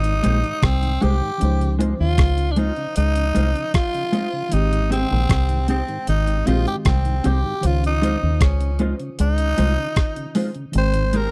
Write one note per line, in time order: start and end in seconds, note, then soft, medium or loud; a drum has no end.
0.00 0.20 G#1 medium
0.00 1.35 G#3 medium
0.00 0.65 D#4 loud
0.00 1.36 D#4 medium
0.00 1.37 G4 medium
0.00 1.38 C5 medium
0.00 1.42 C#5 medium
0.00 closed hi-hat medium
0.04 0.14 G#2 medium
0.04 0.15 D#3 medium
0.22 0.42 A#1 medium
0.22 0.33 G#3 medium
0.22 0.37 G#3 medium
0.22 0.34 C4 medium
0.22 0.37 D#4 medium
0.22 0.34 G4 medium
0.22 0.37 G4 loud
0.22 0.38 C5 medium
0.22 closed hi-hat medium
0.43 0.53 G#2 medium
0.43 0.53 D#3 medium
0.43 closed hi-hat soft
0.63 0.97 C2 medium
0.63 1.04 C4 medium
0.63 kick loud
0.63 cross-stick loud
0.63 closed hi-hat medium
0.82 0.92 G#2 medium
0.82 0.92 D#3 medium
0.82 closed hi-hat soft
1.01 1.20 C2 medium
1.01 1.15 G#3 medium
1.01 1.12 G#3 medium
1.01 1.12 C4 medium
1.01 1.15 D#4 medium
1.01 1.12 G4 medium
1.01 1.15 G4 medium
1.01 1.72 G4 medium
1.01 1.16 C5 medium
1.01 closed hi-hat medium
1.21 1.31 G#2 medium
1.21 1.31 D#3 medium
1.38 1.46 E3 soft
1.38 4.48 C#4 medium
1.38 4.49 D#4 medium
1.38 closed hi-hat medium
1.42 1.93 C#2 loud
1.42 4.50 F3 medium
1.42 4.50 C5 medium
1.60 1.70 C#3 medium
1.60 closed hi-hat soft
1.79 1.90 F3 medium
1.79 1.92 G#3 medium
1.79 1.90 C4 medium
1.79 1.90 D#4 medium
1.79 1.93 D#4 medium
1.79 1.93 F4 medium
1.79 1.93 C5 medium
1.79 closed hi-hat medium
1.99 2.17 D#2 medium
1.99 2.09 C#3 medium
1.99 2.53 F4 loud
2.18 2.70 C#2 medium
2.18 kick loud
2.18 cross-stick loud
2.18 closed hi-hat medium
2.37 2.48 C#3 medium
2.37 closed hi-hat soft
2.51 2.60 D4 medium
2.56 2.67 F3 medium
2.56 2.70 G#3 medium
2.56 2.67 C4 medium
2.56 2.67 D#4 medium
2.56 2.71 D#4 medium
2.56 2.96 D#4 medium
2.56 2.71 F4 medium
2.56 2.71 C5 medium
2.56 closed hi-hat medium
2.76 2.87 C#3 medium
2.76 closed hi-hat soft
2.96 3.31 C#2 medium
2.96 3.70 D#4 loud
2.96 closed hi-hat medium
3.16 3.26 C#3 medium
3.16 closed hi-hat medium
3.34 3.53 C2 medium
3.34 3.45 F3 medium
3.34 3.48 G#3 medium
3.34 3.45 C4 medium
3.34 3.49 D#4 medium
3.34 3.46 D#4 medium
3.34 3.49 F4 medium
3.34 3.49 C5 medium
3.34 closed hi-hat medium
3.55 3.65 C#3 medium
3.55 closed hi-hat soft
3.74 4.54 F4 medium
3.74 kick loud
3.74 cross-stick loud
3.74 closed hi-hat medium
3.94 4.04 C#3 medium
3.94 closed hi-hat medium
4.12 4.23 F3 medium
4.12 4.26 G#3 medium
4.12 4.23 C4 medium
4.12 4.26 D#4 medium
4.12 4.23 D#4 medium
4.12 4.27 F4 medium
4.12 4.27 C5 medium
4.12 closed hi-hat medium
4.33 4.43 C#3 medium
4.49 6.41 D#3 medium
4.49 6.42 G#3 medium
4.49 6.43 C4 medium
4.49 4.91 D#4 medium
4.49 closed hi-hat medium
4.53 5.04 G#1 loud
4.53 6.44 G4 medium
4.71 4.82 G#2 medium
4.71 4.82 D#3 medium
4.71 closed hi-hat medium
4.90 5.01 G#3 medium
4.90 5.04 C4 medium
4.90 5.01 C4 medium
4.90 5.65 C4 medium
4.90 5.04 D#4 medium
4.90 5.01 G4 medium
4.90 5.05 G4 medium
4.90 5.05 C5 medium
4.90 closed hi-hat medium
5.11 5.28 A#1 medium
5.11 5.21 G#2 medium
5.11 5.21 D#3 medium
5.29 5.81 C2 medium
5.29 kick loud
5.29 cross-stick loud
5.29 closed hi-hat medium
5.49 5.60 G#2 medium
5.49 5.60 D#3 soft
5.49 closed hi-hat soft
5.67 5.79 G#3 medium
5.67 5.79 C4 medium
5.67 5.82 C4 medium
5.67 6.05 C4 medium
5.67 5.82 D#4 medium
5.67 5.79 G4 medium
5.67 5.83 G4 medium
5.67 5.83 C5 medium
5.67 closed hi-hat medium
5.88 5.98 G#2 medium
5.88 5.99 D#3 medium
5.88 closed hi-hat soft
6.07 6.42 G#1 loud
6.07 6.48 D#4 medium
6.07 closed hi-hat medium
6.27 6.37 G#2 medium
6.27 6.37 D#3 medium
6.27 closed hi-hat medium
6.45 6.65 A#1 medium
6.45 7.60 D#3 medium
6.45 6.56 G#3 medium
6.45 7.63 G#3 soft
6.45 6.57 C4 medium
6.45 6.60 C4 medium
6.45 7.63 C4 soft
6.45 6.60 D#4 medium
6.45 6.66 F4 medium
6.45 6.54 F#4 soft
6.45 6.57 G4 medium
6.45 6.61 G4 medium
6.45 6.61 C5 medium
6.45 closed hi-hat medium
6.55 7.67 G4 medium
6.66 6.76 G#2 medium
6.66 6.76 D#3 medium
6.66 6.76 G4 medium
6.66 muted clean electric guitar stroke soft
6.66 closed hi-hat soft
6.85 7.20 C2 loud
6.85 7.28 C4 medium
6.85 kick medium
6.85 cross-stick loud
6.85 closed hi-hat medium
7.05 7.15 G#2 medium
7.05 7.15 D#3 medium
7.05 closed hi-hat medium
7.24 7.42 C2 medium
7.24 7.35 G#3 medium
7.24 7.38 C4 medium
7.24 7.35 C4 medium
7.24 7.38 D#4 medium
7.24 7.35 G4 medium
7.24 7.38 G4 medium
7.24 7.67 G4 medium
7.24 7.38 C5 medium
7.24 closed hi-hat medium
7.44 7.54 G#2 medium
7.44 7.54 D#3 medium
7.61 8.15 C#2 loud
7.61 10.69 D#3 medium
7.61 10.71 C#4 medium
7.61 10.70 C5 medium
7.61 closed hi-hat medium
7.66 7.84 F4 medium
7.66 10.72 F4 medium
7.83 7.93 C#3 medium
7.83 8.45 D#4 medium
7.83 closed hi-hat soft
8.02 8.12 F3 medium
8.02 8.15 G#3 medium
8.02 8.13 C4 medium
8.02 8.16 D#4 medium
8.02 8.13 D#4 medium
8.02 8.16 F4 medium
8.02 8.16 C5 medium
8.02 closed hi-hat medium
8.22 8.39 D#2 medium
8.22 8.32 C#3 medium
8.41 8.92 C#2 medium
8.41 8.81 C#4 medium
8.41 kick loud
8.41 cross-stick loud
8.41 closed hi-hat medium
8.60 8.71 C#3 medium
8.60 closed hi-hat soft
8.79 8.90 F3 medium
8.79 8.93 G#3 medium
8.79 8.90 C4 medium
8.79 8.90 D#4 medium
8.79 8.93 D#4 medium
8.79 8.94 F4 medium
8.79 8.94 C5 medium
8.79 closed hi-hat medium
9.00 9.10 C#3 medium
9.00 closed hi-hat soft
9.19 9.53 C#2 medium
9.19 10.33 D#4 loud
9.19 closed hi-hat medium
9.38 9.49 C#3 medium
9.38 closed hi-hat medium
9.57 9.76 C2 medium
9.57 9.68 F3 medium
9.57 9.71 G#3 medium
9.57 9.68 C4 medium
9.57 9.71 D#4 medium
9.57 9.68 D#4 medium
9.57 9.71 F4 medium
9.57 9.72 C5 loud
9.57 closed hi-hat medium
9.78 9.88 C#3 medium
9.96 kick loud
9.96 cross-stick loud
9.96 closed hi-hat medium
10.16 10.26 C#3 medium
10.16 closed hi-hat medium
10.35 10.46 F3 medium
10.35 10.49 G#3 medium
10.35 10.46 C4 medium
10.35 10.49 D#4 medium
10.35 10.46 D#4 medium
10.35 10.49 F4 medium
10.35 10.50 C5 medium
10.35 open hi-hat medium
10.55 10.65 C#3 medium
10.55 closed hi-hat soft
10.72 11.26 G#1 medium
10.72 11.31 D#3 medium
10.72 11.31 G#3 medium
10.72 11.31 C4 medium
10.72 closed hi-hat medium
10.78 11.17 C5 loud
10.78 11.31 G5 medium
10.94 11.05 G#2 medium
10.94 11.05 D#3 medium
10.94 closed hi-hat medium
11.13 11.27 G#3 medium
11.13 11.24 G#3 medium
11.13 11.24 C4 medium
11.13 11.27 D#4 medium
11.13 11.27 G4 medium
11.13 11.25 G4 medium
11.13 11.31 A#4 loud
11.13 11.27 C5 medium
11.13 closed hi-hat medium